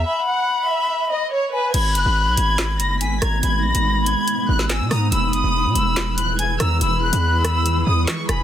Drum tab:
CC |----------------|x---------------|----------------|----------------|
HH |----------------|x-x---x-x-x-x-x-|x--x--x-x---x-o-|x-x---x-x-x-x-x-|
CP |----------------|--------x-------|------------x---|--------x-------|
SD |----------------|--------o-----r-|-----------oo-r-|--------o-----r-|

CC |----------------|
HH |x--x--x-x---x-x-|
CP |------------x---|
SD |------r-----o-r-|